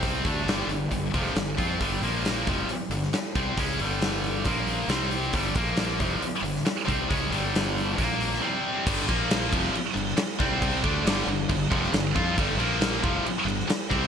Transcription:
Already playing: C2 C3 G3 C4
0.03 kick, open hi-hat
0.24 D2 D3 A3 D4, kick, open hi-hat
0.44 G1 G2, open hi-hat
0.49 D3 G3, snare
0.67 G1 G2 D3, open hi-hat
0.91 G1 G2 D3, kick, open hi-hat
1.13 F1 F2 C3 F3, kick, open hi-hat
1.26 snare
1.35 G1 G2 D3, snare, open hi-hat
1.58 F2 F3 C4 F4, kick, open hi-hat
1.80 G1 G2 D3 G3, kick, open hi-hat
2.02 A#1 A#2 F3 A#3, open hi-hat
2.25 snare, open hi-hat
2.47 F1 F2 C3 F3, kick, open hi-hat
2.68 muted fingered electric bass stroke, muted distorted electric guitar stroke, open hi-hat
2.90 G1 G2 D3, open hi-hat
3.03 snare
3.13 muted fingered electric bass stroke, muted distorted electric guitar stroke, snare, open hi-hat
3.35 C2 C3 G3 C4, kick, open hi-hat
3.57 C#2 C#3 G#3 C#4, kick, open hi-hat
3.79 G1 G2 D3 G3, open hi-hat
4.02 snare, open hi-hat
4.24 open hi-hat
4.45 A#1 A#2 F3 A#3, kick, open hi-hat
4.67 open hi-hat
4.88 C2 C3 G3 C4, snare, open hi-hat
5.11 open hi-hat
5.33 G1 G2 D3 G3, kick, open hi-hat
5.55 A#1 A#2 F3 A#3, kick, open hi-hat
5.77 snare, open hi-hat
5.99 F1 F2 C3 F3, kick, open hi-hat
6.21 muted fingered electric bass stroke, muted distorted electric guitar stroke, open hi-hat
6.42 G1 G2 D3, open hi-hat
6.56 snare
6.64 muted fingered electric bass stroke, muted distorted electric guitar stroke, snare, open hi-hat
6.85 C2 C3 G3 C4, kick, open hi-hat
7.09 C#2 C#3 G#3 C#4, kick, open hi-hat
7.30 G1 G2 D3 G3, open hi-hat
7.55 snare, open hi-hat
7.78 open hi-hat
7.97 A#1 A#2 F3 A#3, kick, open hi-hat
8.21 open hi-hat
8.34 snare
8.41 C3 G3 C4
8.86 G1 G2 D3 G3, kick, crash
9.07 A#1 A#2 F3 A#3, kick, crash
9.31 snare, crash
9.50 F1 F2 C3 F3, kick, crash
9.72 muted distorted electric guitar stroke, muted fingered electric bass stroke, crash
9.94 G1 G2 D3, crash
10.08 snare
10.17 muted distorted electric guitar stroke, snare, crash
10.39 C2 C3 G3 C4, kick, crash
10.62 kick, crash
10.83 D2 D3 A3 D4, kick, crash
11.05 G1 G2 D3 G3, snare, crash
11.27 G1 G2 D3, crash
11.49 G1 G2 D3, kick, crash
11.70 F1 F2 C3 F3, kick, crash
11.84 snare
11.92 G1 G2 D3, snare, crash
12.15 F2 F3 C4 F4, kick, crash
12.36 G1 G2 D3 G3, kick, crash
12.57 A#1 A#2 F3 A#3, crash
12.81 snare, crash
13.02 F1 F2 C3 F3, kick, crash
13.24 muted fingered electric bass stroke, muted distorted electric guitar stroke, crash
13.45 G1 G2 D3, crash
13.60 snare
13.67 muted distorted electric guitar stroke, muted fingered electric bass stroke, snare, crash
13.90 C2 C3 G3 C4, kick, crash

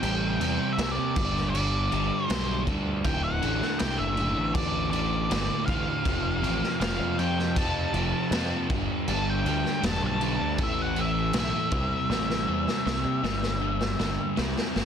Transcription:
Already playing: G5
0.02 A1 C3 G3 C4, crash
0.40 E2 C3 G3 C4, crash
0.73 E5
0.78 C2 C3 G3 C4, snare, crash
0.91 D5
0.98 C3
1.16 G1 G2 D3 G3, kick, crash
1.36 snare
1.50 G2 D5
1.54 D3 G3, crash
1.91 G1 G2 D3 G3, crash
2.26 G2 D3 G3 C5, crash
2.30 B1, snare
2.66 D2 G2 D3 G3, kick, crash
3.04 D1 D2 A2 D3 G5, kick, crash
3.24 F#5
3.41 A1 D2 A2 D3, crash
3.62 snare
3.79 C2 D2 A2 D3 G5, snare, crash
3.98 F#1 E5
4.16 D2 A2 D3, crash
4.38 A1
4.54 D2 A2 D3 D5, kick, crash
4.91 D2 A2 D3 D5, crash
5.29 G1 D2 A2 D3, snare, crash
5.66 A1 D2 A2 D3 F5, kick, crash
6.04 F1 F2 C3 F3, kick, crash
6.42 A1 F2 C3 F3, crash
6.63 snare
6.80 F1 F2 C3 F3 F5, snare, crash
6.99 F2
7.19 F2 C3 F3 G5, crash
7.39 snare
7.56 F2 C3 F3 A5, kick, crash
7.94 F1 F2 C3 F3, crash
8.31 F2 C3 F3, snare, crash
8.70 G1 G2 D3 G3, kick, crash
9.08 G1 G2 D3 G3 A5, crash
9.30 G5
9.45 D2 G2 D3 G3, crash
9.65 snare
9.82 E1 G2 D3 G3 A5, snare, crash
10.02 B1
10.07 A5
10.21 G2 D3 G3, crash
10.40 D2
10.58 A1 A2 E3 A3, kick, crash
10.63 E5
10.82 F#5
10.96 A2 E3 A3, crash
11.01 E5
11.33 B1 A2 E3 A3, snare, crash
11.39 E5
11.71 C2 C3 G3 C4, kick, crash
12.10 A1 C3 G3 C4, snare
12.30 snare
12.47 E2 C3 G3 C4
12.68 snare
12.85 C2 C3 G3 C4, snare
13.05 C3
13.23 G1 G2 D3 G3, snare
13.43 snare
13.62 G2 D3 G3
13.81 snare
13.99 G1 G2 D3 G3, snare
14.37 C2 C3 G3 C4, snare
14.58 snare
14.76 G1 C3 G3 C4, snare

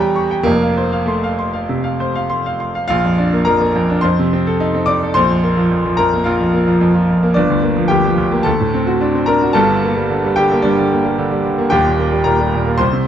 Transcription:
Already playing: E2 G3 G4 C#5 A#5
0.00 G5
0.16 C#6
0.31 G5
0.43 F1 F2 A#3
0.62 F5
0.77 C5
0.93 F5
1.06 A3 C6
1.24 F5
1.39 C6
1.53 F5
1.69 C3
1.84 F5
2.00 C5
2.15 F5
2.30 C6
2.46 F5
2.60 C6
2.75 F5
2.88 A#1 F4 F5
3.05 F2
3.18 D4
3.33 A#3
3.45 F2 A#4 A#5
3.61 A#3
3.75 F2
3.90 D4
4.01 F2 C5 C6
4.19 C3
4.33 C4
4.47 A4
4.60 D#4
4.75 C4
4.86 D#4 D5 D6
5.03 A4
5.14 A#1 C5 C6
5.30 F2
5.43 A#3
5.57 F3
5.71 F2
5.86 F3
5.97 F2 A#4 A#5
6.14 A#3
6.24 A#1 F4 F5
6.40 F2
6.54 A#3
6.67 F3
6.81 F2
6.95 F3
7.09 F2
7.23 A#3
7.34 G1 D4 D5
7.50 D2
7.63 A#3
7.77 F3
7.88 D2 G4 G5
8.04 F3
8.18 D2
8.31 A#3
8.43 D2 A4 A5
8.60 A2
8.74 C4
8.87 F#4
9.01 D4
9.15 C4
9.26 D4 A#4 A#5
9.42 F#4
9.53 G1 G2 A4 A5
9.69 D3
9.83 A#3
9.97 G3
10.10 D3
10.24 G3
10.36 D3 G4 G5
10.52 A#3
10.62 G2 D4 D5
10.78 D3
10.91 A#3
11.05 G3
11.18 D3
11.31 G3
11.45 D3
11.58 A#3
11.70 D#1 D#2 G4 G5
11.86 A#2
11.99 A#3
12.12 G3
12.24 A#2 A#4 A#5
12.40 G3
12.54 A#2
12.67 A#3
12.78 C2 C5 C6
12.93 C3

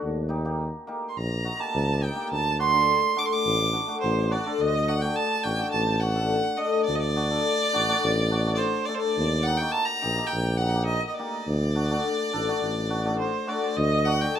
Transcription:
0.04 D#2
0.29 D#4 G4
0.45 A#3 D#4 G4
0.87 A#3 D#4 G4
1.09 C6
1.17 A#1 A#5
1.44 D#4 F#4
1.59 A#3 D#4 G4 A5
1.75 C#2
2.01 D#4 G4 G5
2.16 A#3 D#4 G4
2.32 D2 A5
2.59 D4 F#4 C6
2.72 A3 D4 F#4
3.16 A3 D4 F#4 D6
3.26 C6
3.33 D6
3.46 A1
3.73 D4 F#4
3.87 A3 D4 F#4
4.01 A1 C5
4.31 D4 F#4 D5
4.45 A3 D4 A4
4.60 D2 D#5
4.88 D4 F#4 F#5
5.02 A3 D4 F#4 G5
5.16 A5
5.43 A1 D4 F#4 G5
5.59 A3 D4 F#4
5.72 A1 A5
6.00 D4 F#4 F#5
6.15 A3 D4 A4
6.57 A3 D4 A4 D#5
6.85 D2 D5
6.96 D#5
7.00 D5
7.16 D4 F#4
7.30 A3 D4 A4
7.73 A1 D4 F#4
7.88 A3 D4 F#4
8.04 A1
8.31 D4 F#4
8.46 A3 D4 F#4
8.55 C5 D5
8.85 A3 D4 A4 D5
8.94 C5
9.00 D5
9.18 D#2
9.43 D#4 F#5
9.47 G4
9.57 A#3 G5
9.61 D#4 F#4
9.72 A5
9.85 A#5
10.02 A#1 D#4 G4
10.17 A#3 D#4 G4
10.27 G5
10.34 A#1
10.57 D#4 G4 F#5
10.75 A#3 D#4 G4
10.86 D#5
11.07 D#5
11.14 D5
11.19 A#3 D#4 G4
11.47 D2
11.75 D4 F#4
11.91 A3 D4 F#4
12.33 A1 D4 A4
12.48 A3 D4 F#4
12.62 A1
12.90 D4 F#4
13.05 A3 D4 F#4
13.19 C5
13.47 A3 D4 F#4 D5
13.76 D2 D#5
14.05 D4 F#4 F#5
14.21 A3 D4 F#4 G5
14.35 A5

